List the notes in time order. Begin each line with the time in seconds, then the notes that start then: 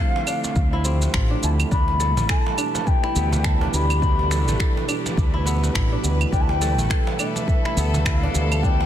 Already playing: D3 F3 A3 C4 D4 E4 F4 G4 C5 F5
0.00 A4
0.16 cajon slap
0.27 D4, claves, shaker
0.44 cajon slap, shaker
0.56 D2, kick, shaker
0.73 E4
0.84 D3 F3 A3 C4 G4, shaker
1.02 cajon slap, shaker
1.14 A1 F4, finger snap, kick, shaker
1.30 D4
1.42 D2 D3 F3 A3 C4 E4 A5, shaker
1.60 claves, shaker
1.70 D2 B2 E3 G3 B3 D4 E4 B5, kick, shaker
1.88 cajon slap
2.00 A4, cajon slap, shaker
2.17 A1 A3, cajon bass, shaker
2.29 A4 G#5, finger snap, kick
2.34 D4
2.40 A5
2.46 G4, cajon slap
2.58 D4, claves, shaker
2.64 B4
2.75 cajon slap, shaker
2.87 G5, kick, shaker
3.04 E4, finger snap
3.15 D2 B2 E3 G3 B3 A4, shaker
3.33 cajon bass, shaker
3.44 E4 A5, finger snap, kick, shaker
3.61 D4, cajon bass
3.73 D2 B2 E3 G3 B3 E4 B5, shaker
3.90 claves, shaker
4.01 B2 E3 G3 B3 D4 E4, kick, shaker
4.19 cajon slap
4.31 A4, finger snap, cajon slap, shaker
4.48 A1 A3, cajon bass, shaker
4.60 A4, finger snap, kick, shaker
4.77 cajon slap
4.88 D4, claves, shaker
5.06 cajon slap, shaker
5.17 D2, kick, shaker
5.34 E4
5.45 B2 E3 G3 B3 A4, shaker
5.64 cajon slap, shaker
5.75 A1 E4, finger snap, kick, shaker
5.92 D4
6.02 D2 B2 E3 G3 B3 E4, shaker
6.21 claves, shaker
6.31 D2 B2 E3 G3 B3 D4 G5, kick, shaker
6.35 E4
6.41 A5
6.49 G5, cajon slap
6.58 A4, cajon slap
6.62 shaker
6.79 A1 A3, cajon bass, shaker
6.90 A4, finger snap, kick, shaker
7.07 cajon slap
7.19 D4 E5, claves, shaker
7.36 cajon slap, shaker
7.48 kick, shaker
7.65 E4, finger snap
7.76 D2 B2 E3 G3 B3 A4, shaker
7.94 cajon bass, shaker
8.05 E4 E5, finger snap, kick, shaker
8.16 F5
8.23 D4, cajon bass
8.33 D2 B2 E3 G3 B3 E4, shaker
8.52 claves, shaker
8.62 B2 E3 G3 B3 D4 G5, kick, shaker
8.66 E4
8.81 cajon slap